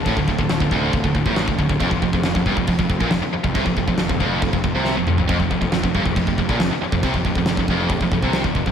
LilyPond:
<<
  \new Staff \with { instrumentName = "String section" } { \time 4/4 \key f \major \tempo 4 = 138 << { <d a f' a'>1 | c'1~ | c'1 | g'1~ |
g'1 | } \\ { f1~ | f1~ | f1~ | f1~ |
f1 | } >> }
  \new Staff \with { instrumentName = "Distorted electric guitar" } { \clef bass \time 4/4 \key f \major a,16 d,16 d,16 d,16 d,16 d,16 d,8 d,16 d,16 d,16 a,8 d,16 d,16 d,16 | f,16 f,16 f,16 f,16 f,16 f,16 g,16 f,16 f,16 f,16 f,16 bes,16 f,16 r8 f,16 | c16 f,16 f,16 f,16 f,16 f,16 f,8 f,16 f,16 f,16 c8 f,16 f,16 f,16 | f,16 f,16 f,16 f,16 f,16 f,16 g,16 f,16 f,16 f,16 f,16 bes,16 f,16 r8 f,16 |
c16 f,16 f,16 f,16 f,16 f,16 f,8 f,16 f,16 f,16 c8 f,16 f,16 f,16 | }
  \new Staff \with { instrumentName = "Distorted electric guitar" } { \clef bass \time 4/4 \key f \major a,16 d,16 d,16 d,16 d,16 d,16 d,8 d,16 d,16 d,16 a,8 d,16 d,16 d,16 | f,16 f,16 f,16 f,16 f,16 f,16 g,16 f,16 f,16 f,16 f,16 bes,16 f,16 r8 f,16 | c16 f,16 f,16 f,16 f,16 f,16 f,8 f,16 f,16 f,16 c8 f,16 f,16 f,16 | f,16 f,16 f,16 f,16 f,16 f,16 g,16 f,16 f,16 f,16 f,16 bes,16 f,16 r8 f,16 |
c16 f,16 f,16 f,16 f,16 f,16 f,8 f,16 f,16 f,16 c8 f,16 f,16 f,16 | }
  \new Staff \with { instrumentName = "Picked electric bass" } { \clef bass \time 4/4 \key f \major a,,16 d,,16 d,,16 d,,16 d,,16 d,,16 d,,8 d,,16 d,,16 d,,16 a,,8 d,,16 d,,16 d,,16 | f,,16 f,,16 f,,16 f,,16 f,,16 f,,16 g,,16 f,,16 f,,16 f,,16 f,,16 bes,,16 f,,16 r8 f,,16 | c,16 f,,16 f,,16 f,,16 f,,16 f,,16 f,,8 f,,16 f,,16 f,,16 c,8 f,,16 f,,16 f,,16 | f,,16 f,,16 f,,16 f,,16 f,,16 f,,16 g,,16 f,,16 f,,16 f,,16 f,,16 bes,,16 f,,16 r8 f,,16 |
c,16 f,,16 f,,16 f,,16 f,,16 f,,16 f,,8 f,,16 f,,16 f,,16 c,8 f,,16 f,,16 f,,16 | }
  \new DrumStaff \with { instrumentName = "Drums" } \drummode { \time 4/4 <cymc bd>16 bd16 bd16 bd16 <cymc sn>16 bd16 bd8 <cymc bd>16 bd16 bd16 bd16 <cymc sn>16 bd16 bd16 bd16 | <cymc bd>16 bd16 bd16 bd16 <cymc sn>16 bd16 bd16 bd16 <cymc bd>16 bd16 bd16 bd16 <cymc sn>8. bd16 | <cymc bd>16 bd16 bd16 bd16 <cymc sn>16 bd16 bd8 <cymc bd>16 bd16 bd8 sn8 toml16 tomfh16 | <cymc bd>16 bd16 bd16 bd16 <cymc sn>16 bd16 bd16 bd16 <cymc bd>16 bd16 bd16 bd16 <cymc sn>8. bd16 |
<cymc bd>16 bd16 bd16 bd16 <cymc sn>16 bd16 bd8 <cymc bd>16 bd16 bd16 bd16 <cymc sn>16 bd16 bd16 bd16 | }
>>